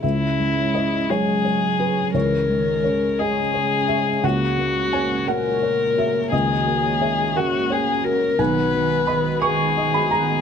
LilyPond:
<<
  \new Staff \with { instrumentName = "Felt piano" } { \time 6/8 \key cis \dorian \tempo 4. = 58 << { e''4 dis''8 cis''4 b'8 | cis''4. dis''4 e''8 | fis''4 gis''8 fis''4 e''8 | dis''4 e''8 fis''4. |
gis''4 b''8 cis'''8. b''16 ais''8 | } \\ { cis,8 gis8 cis''8 gis'8 cis''8 gis'8 | cis,8 gis8 cis''8 gis'8 cis''8 gis'8 | cis,8 ais8 cis''8 ais'8 cis''8 fis'8 | cis,8 ais8 cis''8 ais'8 cis''8 fis'8 |
b,,8 b8 dis''8 b'8 dis''8 fis'8 | } >> }
  \new Staff \with { instrumentName = "Violin" } { \time 6/8 \key cis \dorian e'4. gis'4. | ais'4. gis'4. | fis'4. ais'4. | gis'4. fis'8 gis'8 ais'8 |
b'4. gis'4. | }
  \new Staff \with { instrumentName = "Analog synth pad" } { \time 6/8 \key cis \dorian <gis cis' cis''>2.~ | <gis cis' cis''>2. | <ais fis' cis''>2.~ | <ais fis' cis''>2. |
<b fis' fis''>2. | }
  \new Staff \with { instrumentName = "Cello" } { \clef bass \time 6/8 \key cis \dorian cis4. fis4. | e8 dis8 cis2 | cis4. ais,4. | dis4. cis4. |
dis8 dis8 dis8 dis8 dis8 dis8 | }
>>